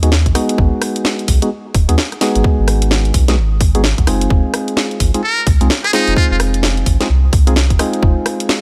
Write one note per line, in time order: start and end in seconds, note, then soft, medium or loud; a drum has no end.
0.00 0.28 D#2 medium
0.00 0.10 G#3 medium
0.00 0.10 B3 medium
0.00 0.10 D#4 medium
0.00 0.10 F#4 medium
0.00 0.10 G#4 medium
0.00 closed hi-hat medium
0.12 snare loud
0.26 0.33 G#1 medium
0.26 kick medium
0.26 closed hi-hat medium
0.35 1.39 G#3 medium
0.35 1.39 B3 medium
0.35 1.39 D#4 medium
0.35 1.39 F#4 medium
0.35 1.39 G#4 loud
0.35 cross-stick medium
0.35 open hi-hat loud
0.49 closed hi-hat medium
0.58 0.70 G#1 loud
0.58 kick loud
0.82 cross-stick medium
0.82 open hi-hat loud
0.96 closed hi-hat medium
1.05 snare loud
1.19 closed hi-hat soft
1.28 1.40 B1 medium
1.28 kick medium
1.28 open hi-hat loud
1.42 1.49 G#3 medium
1.42 1.49 B3 medium
1.42 1.49 D#4 medium
1.42 1.49 F#4 medium
1.42 1.49 G#4 medium
1.42 closed hi-hat medium
1.75 1.86 D#1 medium
1.75 kick loud
1.75 open hi-hat loud
1.89 1.96 D#2 medium
1.89 1.96 G#3 medium
1.89 1.96 B3 medium
1.89 1.96 D#4 medium
1.89 1.96 F#4 medium
1.89 1.96 G#4 loud
1.89 closed hi-hat medium
1.98 snare loud
2.12 cross-stick soft
2.12 closed hi-hat medium
2.21 3.25 G#3 medium
2.21 3.25 B3 medium
2.21 3.25 D#4 medium
2.21 3.25 F#4 medium
2.21 3.25 G#4 medium
2.21 snare medium
2.21 open hi-hat loud
2.35 2.43 G#1 medium
2.35 closed hi-hat medium
2.44 kick loud
2.59 3.12 G#1 medium
2.68 cross-stick medium
2.68 open hi-hat loud
2.82 closed hi-hat medium
2.91 snare loud
3.05 closed hi-hat soft
3.14 3.39 B1 loud
3.14 kick medium
3.14 open hi-hat loud
3.28 3.35 G#3 medium
3.28 3.35 B3 medium
3.28 3.35 D#4 medium
3.28 3.35 F#4 medium
3.28 3.35 G#4 medium
3.28 snare medium
3.28 closed hi-hat medium
3.37 3.94 G#1 medium
3.61 kick loud
3.61 open hi-hat loud
3.75 3.82 G#3 medium
3.75 3.82 B3 medium
3.75 3.82 D#4 medium
3.75 3.82 F#4 medium
3.75 3.82 G#4 loud
3.75 closed hi-hat medium
3.84 snare loud
3.98 4.06 B1 loud
3.98 kick medium
3.98 closed hi-hat medium
4.07 4.27 F#1 medium
4.07 5.11 G#3 medium
4.07 5.11 C4 medium
4.07 5.11 D#4 medium
4.07 5.11 F4 medium
4.07 5.11 G#4 loud
4.07 cross-stick medium
4.07 open hi-hat loud
4.21 closed hi-hat medium
4.30 4.42 F1 loud
4.30 kick loud
4.54 cross-stick medium
4.54 open hi-hat loud
4.68 closed hi-hat medium
4.77 snare loud
4.91 closed hi-hat soft
5.00 5.12 G#1 medium
5.00 kick medium
5.00 open hi-hat loud
5.14 5.21 G#3 medium
5.14 5.21 C4 medium
5.14 5.21 D#4 medium
5.14 5.21 F4 medium
5.14 5.21 G#4 medium
5.14 closed hi-hat medium
5.23 5.44 A#4 medium
5.47 5.58 C2 medium
5.47 kick loud
5.47 open hi-hat loud
5.61 5.68 C2 medium
5.61 5.68 G#3 medium
5.61 5.68 C4 medium
5.61 5.68 D#4 medium
5.61 5.68 F4 medium
5.61 5.68 G#4 loud
5.61 closed hi-hat medium
5.70 snare loud
5.84 5.91 G#4 medium
5.84 cross-stick soft
5.84 closed hi-hat medium
5.93 6.97 G#3 medium
5.93 6.97 C4 medium
5.93 6.97 D#4 medium
5.93 6.14 D#4 loud
5.93 6.97 F4 medium
5.93 6.97 G#4 loud
5.93 snare medium
5.93 open hi-hat loud
6.07 6.15 F1 medium
6.07 closed hi-hat medium
6.16 6.26 F4 medium
6.16 kick loud
6.31 6.84 F1 loud
6.31 6.37 F4 medium
6.40 cross-stick medium
6.40 open hi-hat loud
6.54 closed hi-hat medium
6.63 snare loud
6.77 closed hi-hat soft
6.86 6.98 G#1 medium
6.86 kick medium
6.86 open hi-hat loud
7.00 7.08 G#3 medium
7.00 7.08 C4 medium
7.00 7.08 D#4 medium
7.00 7.08 F4 medium
7.00 7.08 G#4 medium
7.00 snare medium
7.00 closed hi-hat medium
7.10 7.30 C2 medium
7.33 7.72 C2 medium
7.33 kick loud
7.33 open hi-hat loud
7.47 7.54 G#3 medium
7.47 7.54 C4 medium
7.47 7.54 D#4 medium
7.47 7.54 F4 medium
7.47 7.54 G#4 medium
7.47 closed hi-hat medium
7.56 snare loud
7.70 7.78 F1 medium
7.70 kick medium
7.70 closed hi-hat soft
7.79 8.61 G#3 medium
7.79 8.61 C4 medium
7.79 8.61 D#4 medium
7.79 8.61 F4 medium
7.79 8.61 G#4 medium
7.79 cross-stick medium
7.79 open hi-hat loud
7.93 closed hi-hat medium
8.03 8.14 F1 loud
8.03 kick loud
8.26 cross-stick medium
8.26 open hi-hat loud
8.40 closed hi-hat medium
8.49 snare loud